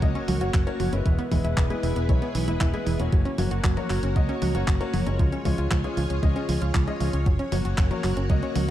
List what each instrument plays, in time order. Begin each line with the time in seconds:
Already playing: string machine F#4 A#4 C#5, sub drop
0.02 fingered electric bass C#2, synth arpeggio sound F#3, grand piano A#3 C#4 F#4 D#5, kick, closed hi-hat
0.15 synth arpeggio sound C#4, closed hi-hat
0.28 fingered electric bass C#2, synth arpeggio sound F#3, open hi-hat, high tom
0.41 fingered electric bass F#1, grand piano A#3 C#4 F#4 C#5, synth arpeggio sound F#4, closed hi-hat
0.54 fingered electric bass F#1, synth arpeggio sound F#3, kick, clap, closed hi-hat
0.67 grand piano A#3 C#4 F#4 C#5, synth arpeggio sound A#4, closed hi-hat
0.80 fingered electric bass F#1, synth arpeggio sound F#3, open hi-hat, high tom
0.93 fingered electric bass F#1, grand piano G#3 B3 E4 B4, synth arpeggio sound C#4, closed hi-hat
1.06 fingered electric bass E1, synth arpeggio sound E3, string machine E4 G#4 B4, kick, closed hi-hat
1.19 synth arpeggio sound B3, closed hi-hat
1.31 fingered electric bass E1, synth arpeggio sound E3, grand piano G#3 B3 E4 B4, kick, open hi-hat, high tom
1.44 fingered electric bass E1, synth arpeggio sound E4, closed hi-hat
1.57 fingered electric bass E1, synth arpeggio sound E3, kick, clap, closed hi-hat
1.70 grand piano G#3 B3 E4 B4, synth arpeggio sound G#4, closed hi-hat
1.83 fingered electric bass E1, synth arpeggio sound E3, open hi-hat
1.96 fingered electric bass E1, synth arpeggio sound B3, closed hi-hat
2.09 fingered electric bass B1, synth arpeggio sound E3, grand piano G#3 B3 E4 C#5, kick, closed hi-hat
2.22 synth arpeggio sound B3, closed hi-hat
2.35 fingered electric bass B1, synth arpeggio sound E3, open hi-hat
2.48 fingered electric bass E1, grand piano G#3 B3 E4 B4, synth arpeggio sound E4, closed hi-hat
2.61 fingered electric bass E1, synth arpeggio sound E3, kick, clap, closed hi-hat
2.74 grand piano G#3 B3 E4 B4, synth arpeggio sound G#4, closed hi-hat
2.87 fingered electric bass E1, synth arpeggio sound E3, open hi-hat
3.00 fingered electric bass E1, grand piano A#3 C#4 F#4 C#5, synth arpeggio sound B3, closed hi-hat
3.12 fingered electric bass F#1, synth arpeggio sound F#3, string machine F#4 A#4 C#5, kick, closed hi-hat
3.25 synth arpeggio sound C#4, closed hi-hat
3.38 fingered electric bass F#1, synth arpeggio sound F#3, grand piano A#3 C#4 F#4 C#5, open hi-hat, high tom
3.51 fingered electric bass F#1, synth arpeggio sound F#4, closed hi-hat
3.64 fingered electric bass F#1, synth arpeggio sound F#3, kick, clap, closed hi-hat
3.77 grand piano A#3 C#4 F#4 C#5, synth arpeggio sound A#4, closed hi-hat, high tom
3.90 fingered electric bass F#1, synth arpeggio sound F#3, clap, open hi-hat
4.03 fingered electric bass F#1, synth arpeggio sound C#4, closed hi-hat
4.16 fingered electric bass C#2, synth arpeggio sound F#3, grand piano A#3 C#4 F#4 D#5, kick, closed hi-hat
4.29 synth arpeggio sound C#4, closed hi-hat
4.42 fingered electric bass C#2, synth arpeggio sound F#3, open hi-hat, high tom
4.55 fingered electric bass F#1, grand piano A#3 C#4 F#4 C#5, synth arpeggio sound F#4, closed hi-hat
4.68 fingered electric bass F#1, synth arpeggio sound F#3, kick, clap, closed hi-hat
4.81 grand piano A#3 C#4 F#4 C#5, synth arpeggio sound A#4, closed hi-hat
4.94 fingered electric bass F#1, synth arpeggio sound F#3, open hi-hat, high tom
5.07 fingered electric bass F#1, grand piano G#3 C#4 F4 C#5, synth arpeggio sound C#4, closed hi-hat
5.19 fingered electric bass C#2, synth arpeggio sound F3, string machine F4 G#4, kick, closed hi-hat
5.32 synth arpeggio sound C#4, closed hi-hat
5.45 fingered electric bass C#2, synth arpeggio sound F3, grand piano G#3 C#4 F4 C#5, kick, open hi-hat, high tom
5.58 fingered electric bass C#2, synth arpeggio sound F4, closed hi-hat
5.71 fingered electric bass C#2, synth arpeggio sound F3, kick, clap, closed hi-hat
5.84 grand piano G#3 C#4 F4 C#5, synth arpeggio sound G#4, closed hi-hat
5.97 fingered electric bass C#2, synth arpeggio sound F3, open hi-hat
6.10 fingered electric bass C#2, synth arpeggio sound C#4, closed hi-hat
6.23 fingered electric bass C#2, synth arpeggio sound F3, grand piano G#3 C#4 F4 D#5, kick, closed hi-hat
6.36 synth arpeggio sound C#4, closed hi-hat
6.49 fingered electric bass C#2, synth arpeggio sound F3, open hi-hat
6.62 fingered electric bass C#2, synth arpeggio sound F4, closed hi-hat
6.75 fingered electric bass C#2, synth arpeggio sound F3, kick, clap, closed hi-hat
6.88 grand piano G#3 C#4 F4 D#5, synth arpeggio sound G#4, closed hi-hat
7.00 fingered electric bass C#2, synth arpeggio sound F3, open hi-hat
7.13 fingered electric bass C#2, synth arpeggio sound C#4, closed hi-hat
7.26 fingered electric bass F#1, synth arpeggio sound F#3, string machine F#4 A#4, kick, closed hi-hat
7.39 synth arpeggio sound C#4, closed hi-hat
7.52 fingered electric bass F#1, synth arpeggio sound F#3, grand piano A#3 C#4 F#4 C#5, open hi-hat, high tom
7.65 fingered electric bass F#1, synth arpeggio sound F#4, closed hi-hat
7.78 fingered electric bass F#1, synth arpeggio sound F#3, kick, clap, closed hi-hat
7.91 grand piano A#3 C#4 F#4 C#5, synth arpeggio sound A#4, closed hi-hat, high tom
8.04 fingered electric bass F#1, synth arpeggio sound F#3, clap, open hi-hat
8.17 fingered electric bass F#1, synth arpeggio sound C#4, closed hi-hat
8.30 fingered electric bass C#2, synth arpeggio sound F#3, grand piano A#3 C#4 F#4 D#5, kick, closed hi-hat
8.43 synth arpeggio sound C#4, closed hi-hat
8.56 fingered electric bass C#2, synth arpeggio sound F#3, open hi-hat, high tom